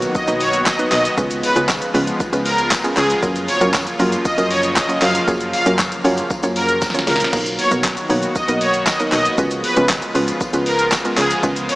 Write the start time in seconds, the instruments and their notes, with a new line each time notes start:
Already playing: analog synth pad D#3 F#3 A#3 B3 F#4, synth pluck B4
0.02 closed hi-hat, tambourine, shaker
0.15 supersaw synth D#5, kick, tambourine, shaker
0.27 fm bass B1, synth pluck A#3 B3 D#4 F#4 B4, closed hi-hat, shaker
0.41 supersaw synth C#5, open hi-hat, tambourine, shaker
0.53 closed hi-hat, shaker
0.66 supersaw synth D#5, kick, snare, clap, tambourine, shaker
0.79 synth pluck A#3 B3 D#4 F#4 B4, closed hi-hat, shaker
0.92 fm bass B1, supersaw synth D#5, clap, open hi-hat, tambourine, shaker
1.05 closed hi-hat, tambourine, shaker
1.17 fm bass C#2, analog synth pad C#3 F3 G#3 F4, synth pluck G#3 B3 C#4 F4 B4, kick, tambourine, shaker
1.31 closed hi-hat, shaker
1.43 supersaw synth B4, open hi-hat, tambourine, shaker
1.56 fm bass C#2, synth pluck G#3 B3 C#4 F4 B4, closed hi-hat, shaker
1.69 kick, snare, clap, tambourine, shaker
1.82 closed hi-hat, shaker
1.94 fm bass C#2, synth pluck G#3 B3 C#4 F4 B4, open hi-hat, tambourine, shaker
2.07 closed hi-hat, shaker
2.20 kick, tambourine, shaker
2.33 fm bass C#2, synth pluck G#3 B3 C#4 F4 B4, closed hi-hat, tambourine, shaker
2.45 supersaw synth A#4, open hi-hat, tambourine, shaker
2.58 closed hi-hat, shaker
2.71 kick, snare, clap, tambourine, shaker
2.84 synth pluck G#3 B3 C#4 F4 G#4, closed hi-hat, shaker
2.97 fm bass C#2, supersaw synth G#4, clap, open hi-hat, tambourine, shaker
3.10 closed hi-hat, shaker
3.22 fm bass F#2, analog synth pad F3 F#3 A#3, synth pluck F#3 A#3 C#4 F4 A#4, kick, tambourine, shaker
3.36 closed hi-hat, tambourine, shaker
3.48 supersaw synth C#5, open hi-hat, tambourine, shaker
3.61 fm bass F#2, synth pluck F#3 A#3 C#4 F4 A#4, closed hi-hat, shaker
3.74 kick, snare, clap, tambourine, shaker
3.87 closed hi-hat, shaker
3.99 fm bass F#2, synth pluck F#3 A#3 C#4 F4 A#4, open hi-hat, tambourine, shaker
4.12 closed hi-hat, shaker
4.25 supersaw synth D#5, kick, tambourine, shaker
4.38 fm bass F#2, synth pluck F#3 A#3 C#4 F4 A#4, closed hi-hat, tambourine, shaker
4.51 supersaw synth C#5, open hi-hat, tambourine, shaker
4.63 closed hi-hat, shaker
4.76 supersaw synth D#5, kick, snare, clap, tambourine, shaker
4.89 synth pluck F#3 A#3 C#4 F4 C#5, closed hi-hat, shaker
5.02 fm bass F#2, supersaw synth F5, clap, open hi-hat, tambourine, shaker
5.15 closed hi-hat, shaker
5.28 fm bass F#2, synth pluck F#3 A#3 C#4 F4 G#4, kick, tambourine, shaker
5.41 closed hi-hat, shaker
5.53 supersaw synth F5, open hi-hat, tambourine, shaker
5.66 fm bass F#2, synth pluck F#3 A#3 C#4 F4 A#4, closed hi-hat, shaker
5.79 kick, snare, clap, tambourine, shaker
5.92 closed hi-hat, shaker
6.04 fm bass F#2, synth pluck F#3 A#3 C#4 F4 C#5, open hi-hat, tambourine, shaker
6.18 closed hi-hat, tambourine, shaker
6.30 kick, tambourine, shaker
6.43 fm bass F#2, synth pluck F#3 A#3 C#4 F4 C#5, closed hi-hat, tambourine, shaker
6.56 supersaw synth A#4, open hi-hat, tambourine, shaker
6.69 closed hi-hat, shaker
6.82 kick, snare, tambourine, shaker
6.90 snare
6.94 synth pluck F#3 A#3 C#4 F4 C#5, closed hi-hat, shaker
6.99 snare
7.07 fm bass C#2, supersaw synth A#4, snare, open hi-hat, tambourine, shaker
7.16 snare
7.20 closed hi-hat, shaker
7.24 snare
7.33 fm bass B1, analog synth pad D#3 B3 F#4, synth pluck F#3 A#3 B3 D#4 A#4, kick, crash, tambourine
7.46 closed hi-hat, tambourine, shaker
7.59 supersaw synth C#5, open hi-hat, tambourine, shaker
7.71 fm bass B1, synth pluck F#3 A#3 B3 D#4 A#4, closed hi-hat, shaker
7.84 kick, snare, clap, tambourine, shaker
7.97 closed hi-hat, shaker
8.10 fm bass B1, synth pluck F#3 A#3 B3 D#4 C#5, open hi-hat, tambourine, shaker
8.23 closed hi-hat, shaker
8.35 supersaw synth D#5, kick, tambourine, shaker
8.48 fm bass B1, synth pluck F#3 A#3 B3 D#4 A#4, closed hi-hat, shaker
8.61 supersaw synth C#5, open hi-hat, tambourine, shaker
8.74 closed hi-hat, shaker
8.86 supersaw synth D#5, kick, snare, clap, tambourine, shaker
9.00 synth pluck F#3 A#3 B3 D#4 A#4, closed hi-hat, shaker
9.12 fm bass B1, supersaw synth D#5, clap, open hi-hat, tambourine, shaker
9.25 closed hi-hat, shaker
9.38 fm bass C#2, analog synth pad C#3 F3 G#3 F4, synth pluck G#3 B3 C#4 F4 B4, kick, tambourine, shaker
9.51 closed hi-hat, tambourine, shaker
9.64 supersaw synth B4, open hi-hat, tambourine, shaker
9.76 fm bass C#2, synth pluck G#3 B3 C#4 F4 B4, closed hi-hat, shaker
9.89 kick, snare, clap, tambourine, shaker
10.02 closed hi-hat, shaker
10.15 fm bass C#2, synth pluck G#3 B3 C#4 F4 B4, open hi-hat, tambourine, shaker
10.28 closed hi-hat, tambourine, shaker
10.40 kick, tambourine, shaker
10.53 fm bass C#2, synth pluck G#3 B3 C#4 F4 B4, closed hi-hat, tambourine, shaker
10.66 supersaw synth A#4, open hi-hat, tambourine, shaker
10.79 closed hi-hat, shaker
10.92 kick, snare, clap, tambourine, shaker
11.05 synth pluck G#3 B3 C#4 F4 A#4, closed hi-hat, shaker
11.18 fm bass C#2, supersaw synth G#4, clap, open hi-hat, tambourine, shaker
11.31 closed hi-hat, tambourine, shaker
11.43 fm bass C#2, synth pluck G#3 B3 C#4 F4 B4, kick, tambourine, shaker
11.56 closed hi-hat, shaker
11.69 supersaw synth C#5, open hi-hat, tambourine, shaker